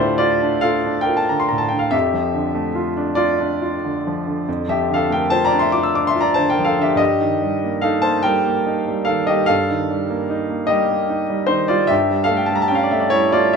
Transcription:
Already playing: D2 A2 D3 F4 G4 A4 C5 D5 E5 F5
0.00 A3 E4
0.18 F4 D5
0.42 D4
0.61 F4 A4 F5
0.86 D4
1.01 A#4 G5
1.08 F4
1.17 A5
1.29 D3 A#5
1.40 C6
1.48 A2 A#5
1.58 A5
1.69 G5
1.73 D3
1.79 F5
1.91 F2 G4 E5
2.14 F3
2.34 D3
2.54 A3
2.75 F4
2.97 D4
3.15 F4 D5
3.40 D4
3.62 F4
3.84 D3
4.07 F3
4.27 D3
4.48 F2
4.68 F3 G4 E5
4.90 D3
4.94 A4 F5
5.10 A3 A#4 G5
5.30 F4 C5 A5
5.45 D5 A#5
5.53 D4
5.59 E5 C6
5.72 F4 D6
5.83 E6
5.95 D4 D6
6.07 E5 C6
6.16 F4
6.21 D5 A#5
6.34 D3 C5 A5
6.50 A#4 G5
6.59 F3
6.64 A4 F5
6.79 D3 G4 E5
6.95 G2 G4 D#5
7.21 D#3
7.43 G3
7.64 A#3
7.82 D#4 A4 F5
8.02 A#3 C5 A5
8.23 G3 A#4 G5
8.46 A#3
8.66 D#4
8.88 G3
9.05 D#3 A4 F5
9.27 G3 G4 D#5
9.46 G2 A4 F5
9.71 D#3
9.91 G3
10.10 A#3
10.30 D#4
10.50 A#3
10.67 G3 G4 D#5
10.90 A#3
11.10 D#4
11.30 G3
11.47 D#3 D#4 C5
11.68 G3 F4 D5
11.87 G2 G4 E5
12.11 G3
12.24 A4 F5
12.31 A3
12.37 G5
12.46 A5
12.52 G3 A#5
12.62 A5
12.68 C#4 G5
12.75 F5
12.83 D5
12.91 A3 E5
13.00 D5
13.10 G3 E4 C#5
13.32 A3 F4 D5

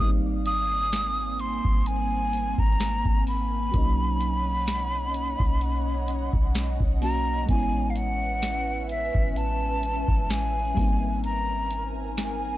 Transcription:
Already playing: G3
0.00 G#1 A#3 B3 C4 D#4 G#5 D#6
0.07 C4
0.46 D#6, closed hi-hat
0.92 snare, closed hi-hat
1.39 C6, closed hi-hat
1.65 G#1, kick
1.86 G#5, closed hi-hat
2.33 closed hi-hat
2.58 G#1 A#5, kick
2.80 snare, closed hi-hat
3.05 G#1, kick
3.27 B5, open hi-hat
3.71 B1 F#3 A#3 C#4 C#5 D#5 F#5, kick, closed hi-hat
3.75 C#4 D#4
4.21 closed hi-hat
4.67 snare, closed hi-hat
5.14 closed hi-hat
5.40 B1, kick
5.61 closed hi-hat
6.08 closed hi-hat
6.33 B1, kick
6.55 snare, closed hi-hat
6.80 B1, kick
7.01 F#3 A#3 C#4 F#4 A#5, open hi-hat
7.46 A1 G#3 B3 C#4 B4 E5 G#5, kick, closed hi-hat
7.50 C#4 E4
7.90 F5
7.96 F#5, closed hi-hat
8.42 snare, closed hi-hat
8.89 E5, closed hi-hat
9.15 A1, kick
9.36 A5, closed hi-hat
9.83 closed hi-hat
10.08 A1, kick
10.30 G#5, snare, closed hi-hat
10.74 G#1 G3 A#3 C4 A#4 G#5 A#5, kick, open hi-hat
10.78 C4 D#4
11.24 A#5, closed hi-hat
11.71 closed hi-hat
12.17 G#5, snare, closed hi-hat

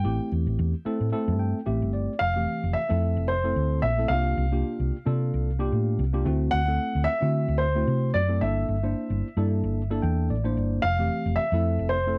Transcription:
Already playing: G5
0.04 A1 A3 C4 E4 G4
0.32 E2
0.47 A1
0.59 E2
0.85 A3 C4 E4 A4, muted fingered electric bass stroke
1.01 A2
1.12 A3 C4 E4 A4, muted fingered electric bass stroke
1.28 G2
1.39 G5
1.66 A1 A3 C4 E4 G4 E5
1.82 G1
1.93 D5
2.19 F1 F5
2.36 E3 A3 C4 G4
2.63 F1
2.73 E5
2.89 F2 A3 C4 E4 A4
3.17 F1
3.28 C5
3.44 A3 C4 E4 A4
3.56 D2
3.82 A#1 E5
3.97 A3 C4 E4 A4
4.08 C2 A#3 D4 F4 G4 F5
4.37 C2
4.52 A#3 D4 F4 G4
4.80 C2
5.06 C3 A#3 D4 F4 A4
5.34 C2
5.59 A#3 D4 F4 G4
5.72 A2
5.99 C2
6.13 A#3 D4 F4 G4
6.25 D2 A3 C4 E4 F#4
6.51 D2 F#5
6.67 A3 C4 E4 A4
6.95 D2
7.04 E5
7.20 D3 A3 C4 E4 F#4
7.48 D2
7.58 C5
7.75 A3 C4 E4 F#4
7.87 C3
8.14 F#2 D5
8.28 A3 C4 E4 A4
8.41 G1 A#3 D4 E4 A4 E5
8.69 G1
8.83 A#3 D4 E4 C5
9.10 G1
9.37 G2 A#3 D4 E4 A4
9.64 G1
9.90 A#3 D4 E4 A4
10.02 E2 G5
10.30 A1 D5
10.44 A#3 D4 E4 C5
10.57 G1
10.82 F1 F5
10.98 E3 A3 C4 G4
11.26 F1
11.36 E5
11.52 F2 A3 C4 E4 A4
11.79 F1
11.89 C5
12.07 A3 C4 E4 A4

